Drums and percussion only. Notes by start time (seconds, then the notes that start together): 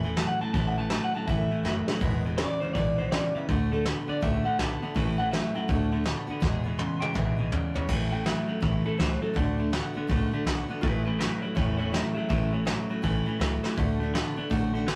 0.17 snare, open hi-hat
0.54 kick, open hi-hat
0.90 snare, open hi-hat
1.27 kick, open hi-hat
1.65 snare
1.88 snare
2.01 kick, open hi-hat
2.38 snare, open hi-hat
2.75 kick, open hi-hat
3.12 snare, open hi-hat
3.49 kick, open hi-hat
3.86 snare, open hi-hat
4.23 kick, open hi-hat
4.59 snare, open hi-hat
4.96 kick, open hi-hat
5.33 snare, open hi-hat
5.69 kick, open hi-hat
6.06 snare, open hi-hat
6.42 kick, snare
6.79 high tom
7.02 high tom
7.15 kick, mid tom
7.52 floor tom
7.75 floor tom
7.88 kick, crash
8.26 snare, open hi-hat
8.62 kick, open hi-hat
9.00 snare, open hi-hat
9.36 kick, open hi-hat
9.73 snare, open hi-hat
10.09 kick, open hi-hat
10.47 snare, open hi-hat
10.83 kick, open hi-hat
11.20 snare, open hi-hat
11.57 kick, open hi-hat
11.94 snare, open hi-hat
12.30 kick, open hi-hat
12.67 snare, open hi-hat
13.04 kick, open hi-hat
13.41 snare, open hi-hat
13.64 snare
13.78 kick, open hi-hat
14.15 snare, open hi-hat
14.51 kick, open hi-hat
14.88 snare, open hi-hat